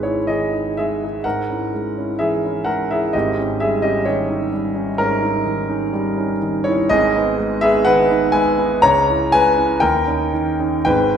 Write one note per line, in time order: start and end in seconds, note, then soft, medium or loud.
0.00 1.27 G#1 soft
0.00 1.26 G#2 soft
0.00 0.18 G#3 soft
0.00 0.05 D#4 medium
0.00 0.26 E4 medium
0.00 0.04 G#4 soft
0.00 1.26 B4 medium
0.00 0.27 C#5 medium
0.04 0.26 D#4 soft
0.04 0.26 G#4 soft
0.27 0.67 D#3 soft
0.27 0.52 G#4 medium
0.27 0.76 D#5 medium
0.53 0.75 D#4 soft
0.53 0.75 G#4 soft
0.77 1.16 G#3 soft
0.77 1.03 G#4 medium
0.77 1.25 E5 medium
1.04 1.24 D#4 soft
1.04 1.24 G#4 soft
1.24 1.48 G#2 medium
1.24 2.15 A#4 medium
1.24 2.19 F#5 medium
1.50 1.70 C#4 soft
1.50 1.70 E4 soft
1.74 2.10 G#3 soft
1.98 2.18 C#4 soft
1.98 2.18 E4 soft
2.19 2.57 E3 soft
2.19 2.63 G#4 medium
2.19 2.66 E5 medium
2.45 2.65 C#4 soft
2.45 2.66 E4 soft
2.65 3.04 G#3 soft
2.65 2.88 A#4 medium
2.65 2.89 F#5 medium
2.91 3.12 C#4 soft
2.91 3.12 E4 soft
2.91 3.13 G#4 medium
2.91 3.14 E5 medium
3.13 3.37 G#1 medium
3.13 3.37 G#2 medium
3.13 3.58 G4 medium
3.13 3.60 D#5 medium
3.38 3.58 C#4 soft
3.38 3.59 D#4 soft
3.60 3.97 G3 soft
3.60 3.82 G#4 medium
3.60 3.83 E5 medium
3.82 4.04 C#4 soft
3.82 4.04 D#4 soft
3.82 4.04 G4 medium
3.82 4.05 D#5 medium
4.05 4.43 D#3 soft
4.05 4.93 G4 medium
4.05 4.97 C#5 medium
4.29 4.49 C#4 soft
4.29 4.50 D#4 soft
4.53 4.89 G3 soft
4.75 4.95 C#4 soft
4.75 4.95 D#4 soft
4.98 5.21 G#2 medium
4.98 5.21 C#4 medium
4.98 6.63 A#4 medium
5.22 5.42 C#4 soft
5.22 5.43 D#4 soft
5.45 5.82 D#3 medium
5.69 5.89 C#4 soft
5.69 5.89 D#4 medium
5.93 6.30 G3 medium
6.18 6.37 C#4 soft
6.18 6.38 D#4 medium
6.42 6.79 D#3 medium
6.64 6.86 C#4 medium
6.64 6.86 D#4 medium
6.64 6.86 E4 medium
6.64 6.87 C#5 medium
6.89 7.12 G#1 medium
6.89 7.12 G#2 medium
6.89 7.58 G#4 medium
6.89 7.61 D#5 loud
7.16 7.36 B3 soft
7.16 7.35 D#4 medium
7.38 7.75 G#3 medium
7.61 7.83 B3 medium
7.61 7.83 D#4 medium
7.61 7.83 G#4 medium
7.61 7.84 E5 loud
7.85 8.24 D#3 medium
7.85 8.30 B4 medium
7.85 8.33 F#5 loud
8.11 8.32 B3 soft
8.11 8.32 D#4 medium
8.32 8.72 G#3 medium
8.32 8.78 B4 medium
8.32 8.81 G#5 loud
8.58 8.80 B3 medium
8.58 8.80 D#4 medium
8.82 9.06 C#2 medium
8.82 9.28 C#5 medium
8.82 9.31 A#5 loud
9.08 9.29 C#4 medium
9.08 9.29 E4 medium
9.32 9.72 G#3 medium
9.32 9.79 B4 medium
9.32 9.81 G#5 loud
9.58 9.79 C#4 medium
9.58 9.79 E4 medium
9.80 10.06 D#2 medium
9.80 10.83 A#4 medium
9.80 10.83 G5 loud
10.07 10.30 C#4 soft
10.07 10.30 D#4 medium
10.33 10.76 D#3 medium
10.60 10.84 C#4 soft
10.60 10.84 D#4 medium
10.85 11.13 G#1 medium
10.85 11.13 G#2 medium
10.85 11.17 B4 medium
10.85 11.17 G5 loud